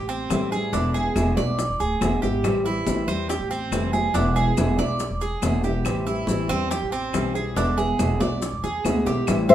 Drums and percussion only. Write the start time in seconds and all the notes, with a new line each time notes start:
0.09 high conga, maracas
0.30 high bongo, low bongo, high conga, claves, maracas
0.52 high bongo, maracas
0.73 high bongo, high conga, maracas
0.95 high bongo, high conga, maracas
1.16 high bongo, high conga, claves, maracas
1.37 high bongo, high conga, maracas
1.58 high bongo, high conga, maracas
1.80 high bongo, high conga, maracas
2.01 high bongo, low bongo, high conga, claves, maracas
2.22 high bongo, high conga, maracas
2.44 high bongo, high conga, claves, maracas
2.65 high bongo, high conga, maracas
2.87 high bongo, high conga, maracas
3.08 high bongo, claves, maracas
3.30 high bongo, high conga, maracas
3.51 high conga, maracas
3.72 high bongo, low bongo, high conga, claves, maracas
3.94 high bongo, high conga, maracas
4.15 high bongo, high conga, maracas
4.36 high bongo, high conga, maracas
4.57 high bongo, high conga, claves, maracas
4.78 high bongo, high conga, maracas
4.99 high bongo, high conga, maracas
5.21 high bongo, high conga, maracas
5.42 high bongo, low bongo, high conga, claves, maracas
5.64 high conga, maracas
5.85 high bongo, high conga, claves, maracas
6.06 high bongo, high conga, maracas
6.27 high bongo, high conga, maracas
6.49 high bongo, claves, maracas
6.70 high bongo, high conga, maracas
6.92 high conga, maracas
7.13 high bongo, low bongo, high conga, claves, maracas
7.35 high bongo, maracas
7.56 high bongo, high conga, maracas
7.78 high bongo, high conga, maracas
7.99 high bongo, high conga, claves, maracas
8.21 high bongo, high conga, maracas
8.42 high bongo, high conga, maracas
8.64 high bongo, high conga, maracas
8.85 high bongo, high conga, claves, maracas
9.06 low bongo, high conga, maracas
9.27 high bongo, high conga, claves, maracas
9.49 maracas